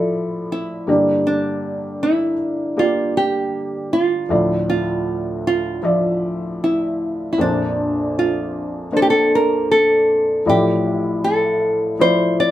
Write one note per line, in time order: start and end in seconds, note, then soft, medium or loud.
0.00 0.84 A2 soft
0.00 0.90 F3 medium
0.00 0.90 E4 medium
0.00 0.54 A4 medium
0.00 0.89 D5 medium
0.52 1.23 E4 medium
0.87 3.88 G2 soft
0.87 3.88 D3 soft
0.87 2.32 A#3 medium
0.87 2.32 G4 medium
0.87 2.33 D5 medium
1.27 2.02 D4 medium
2.03 2.81 E4 medium
2.77 4.22 A#3 medium
2.77 3.17 F4 medium
2.77 4.22 G4 medium
2.77 4.23 D5 medium
3.17 3.93 G4 medium
3.93 4.68 F4 medium
4.29 7.34 D2 soft
4.29 7.35 A2 medium
4.29 5.75 F3 medium
4.29 5.76 D5 medium
4.29 5.76 E5 medium
4.70 5.46 F4 medium
5.47 6.66 F4 medium
5.83 7.30 F3 medium
5.83 7.31 D5 medium
5.83 7.31 E5 medium
6.64 7.31 E4 medium
7.33 7.39 E4 medium
7.37 10.43 A#1 soft
7.37 10.43 F2 soft
7.37 8.85 A#3 medium
7.37 8.86 D4 soft
7.37 8.18 D4 medium
7.37 8.86 C5 medium
8.19 8.97 F4 medium
8.92 10.39 A#3 medium
8.92 10.39 D4 medium
8.92 10.39 C5 medium
8.97 8.99 A4 medium
9.02 9.08 G4 medium
9.10 9.32 A4 medium
9.35 9.71 A#4 medium
9.71 10.49 A4 medium
10.46 12.51 A1 soft
10.46 12.51 A2 soft
10.46 11.92 F3 medium
10.46 11.93 E4 medium
10.46 11.24 G4 medium
10.46 11.93 D5 medium
11.24 12.01 A4 medium
11.99 12.51 F3 medium
11.99 12.51 E4 medium
11.99 12.40 C5 medium
11.99 12.51 D5 medium
12.40 12.51 D5 medium